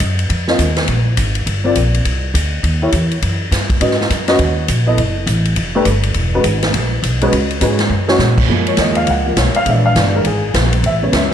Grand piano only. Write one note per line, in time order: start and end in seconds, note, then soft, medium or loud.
0.48 0.58 C4 medium
0.48 0.58 F4 medium
0.48 0.58 A#4 medium
0.48 0.58 D#5 medium
1.64 1.74 C4 medium
1.64 1.75 F4 medium
1.64 1.75 A#4 medium
1.64 1.75 D5 medium
2.82 2.92 E4 medium
2.82 2.92 G4 medium
2.82 2.92 A#4 medium
2.82 2.92 C#5 medium
3.81 3.97 C#4 medium
3.81 3.97 F#4 medium
3.81 3.97 B4 soft
3.81 3.97 D#5 medium
4.28 4.38 C#4 medium
4.28 4.38 F#4 medium
4.28 4.38 B4 medium
4.28 4.38 D#5 medium
4.86 4.96 B3 medium
4.86 4.97 E4 medium
4.86 4.97 A4 medium
4.86 4.97 D#5 medium
5.75 5.85 A3 medium
5.75 5.85 D4 medium
5.75 5.85 G4 medium
5.75 5.85 B4 medium
6.34 6.43 G#3 medium
6.34 6.44 C#4 medium
6.34 6.44 F#4 medium
6.34 6.44 B4 medium
7.22 7.31 G#3 medium
7.22 7.31 C#4 medium
7.22 7.31 F#4 medium
7.22 7.32 B4 medium
7.61 7.77 G#3 medium
7.61 7.77 C#4 medium
7.61 7.78 F#4 medium
7.61 7.78 B4 medium
8.08 8.18 G#3 medium
8.08 8.19 C#4 medium
8.08 8.19 F#4 medium
8.08 8.19 C#5 medium
8.49 9.23 F3 soft
8.49 9.24 G#3 soft
8.49 9.24 A#3 medium
8.68 8.79 C#5 medium
8.80 8.97 D#5 medium
8.97 9.07 F5 medium
9.10 9.26 F#5 medium
9.25 9.35 F3 soft
9.25 9.36 G#3 soft
9.25 9.36 A#3 soft
9.25 9.37 A#4 medium
9.38 9.55 C#5 medium
9.56 9.67 F5 medium
9.67 10.13 E3 soft
9.67 10.13 G#3 soft
9.67 10.14 D4 medium
9.67 9.86 E5 medium
9.86 9.96 F5 medium
9.98 10.15 D5 medium
10.15 10.24 E3 soft
10.15 10.24 G#3 soft
10.15 10.24 D4 soft
10.15 10.25 A#4 medium
10.27 10.53 G#4 medium
10.86 11.02 E5 medium
11.02 11.19 C#3 medium
11.02 11.20 G#3 soft
11.02 11.20 B3 medium
11.02 11.13 C#5 medium
11.16 11.34 E5 medium